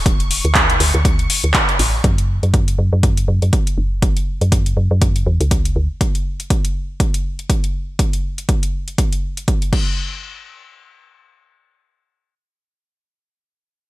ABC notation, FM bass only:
X:1
M:4/4
L:1/16
Q:"Swing 16ths" 1/4=121
K:F#m
V:1 name="FM bass" clef=bass
D,,,3 D,,3 D,, D,,3 z D,, z2 A,,,2 | F,,3 F,,3 F,, F,,3 F,, F,, z2 F,,,2- | F,,,3 F,,3 F,, F,,3 E,, C,,3 D,, z | z16 |
z16 | z16 | z16 |]